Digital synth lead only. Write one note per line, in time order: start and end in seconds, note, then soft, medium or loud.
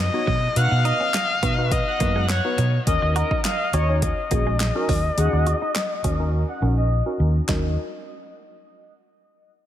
0.56 0.81 F#5 loud
0.85 1.27 D#5 medium
1.43 1.56 D#5 medium
1.87 1.99 F#5 medium
2.16 2.41 F#5 medium
2.87 3.12 D#5 loud
3.16 3.41 A#4 medium
3.45 3.70 D#5 medium
3.74 3.87 C#5 medium
5.18 5.43 F#5 loud
5.47 5.88 D#5 medium
6.05 6.18 D#5 medium
6.49 6.60 F#5 medium
6.77 7.02 D#5 medium
7.49 7.75 D#5 medium